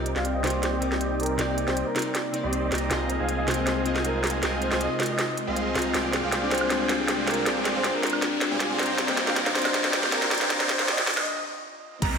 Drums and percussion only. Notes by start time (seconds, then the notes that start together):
0.06 closed hi-hat
0.16 snare
0.25 closed hi-hat
0.44 snare, closed hi-hat
0.47 closed hi-hat
0.50 closed hi-hat
0.63 snare, closed hi-hat
0.82 closed hi-hat
0.92 snare
1.01 closed hi-hat
1.20 closed hi-hat
1.23 closed hi-hat
1.26 closed hi-hat
1.39 snare, closed hi-hat
1.58 closed hi-hat
1.68 snare
1.77 closed hi-hat
1.96 snare, closed hi-hat
1.99 closed hi-hat
2.02 closed hi-hat
2.15 snare, closed hi-hat
2.34 closed hi-hat
2.53 closed hi-hat
2.72 snare, closed hi-hat
2.75 closed hi-hat
2.78 closed hi-hat
2.91 snare, closed hi-hat
3.10 closed hi-hat
3.29 closed hi-hat
3.48 snare, closed hi-hat
3.51 closed hi-hat
3.54 closed hi-hat
3.67 snare, closed hi-hat
3.86 closed hi-hat
3.96 snare
4.05 closed hi-hat
4.24 snare, closed hi-hat
4.27 closed hi-hat
4.30 closed hi-hat
4.43 snare, closed hi-hat
4.62 closed hi-hat
4.72 snare
4.81 closed hi-hat
5.00 snare, closed hi-hat
5.03 closed hi-hat
5.06 closed hi-hat
5.19 snare, closed hi-hat
5.37 closed hi-hat
5.56 closed hi-hat
5.75 snare, closed hi-hat
5.79 closed hi-hat
5.82 closed hi-hat
5.94 snare, closed hi-hat
6.13 snare, closed hi-hat
6.32 snare, closed hi-hat
6.51 snare, closed hi-hat
6.55 closed hi-hat
6.58 closed hi-hat, high woodblock
6.70 snare, closed hi-hat
6.89 snare, closed hi-hat
7.08 snare, closed hi-hat
7.27 snare, closed hi-hat
7.31 closed hi-hat
7.34 closed hi-hat
7.46 snare, closed hi-hat
7.65 snare, closed hi-hat
7.84 snare, closed hi-hat
8.03 snare, closed hi-hat
8.07 closed hi-hat
8.10 closed hi-hat, high woodblock
8.22 snare, closed hi-hat
8.41 snare, closed hi-hat
8.60 snare, closed hi-hat
8.79 snare, closed hi-hat
8.83 closed hi-hat
8.86 closed hi-hat
8.98 snare, closed hi-hat
9.08 snare
9.17 snare, closed hi-hat
9.27 snare
9.36 snare, closed hi-hat
9.46 snare
9.55 snare, closed hi-hat
9.59 closed hi-hat
9.62 snare, closed hi-hat, high woodblock
9.74 snare, closed hi-hat
9.84 snare
9.93 snare, closed hi-hat
10.03 snare
10.12 snare, closed hi-hat
10.22 snare
10.31 snare, closed hi-hat
10.35 closed hi-hat
10.38 snare, closed hi-hat
10.50 snare, closed hi-hat
10.60 snare
10.69 snare, closed hi-hat
10.79 snare
10.88 snare, closed hi-hat
10.98 snare
11.07 snare, closed hi-hat
11.11 closed hi-hat
11.14 snare, closed hi-hat, high woodblock
12.02 kick, closed hi-hat, crash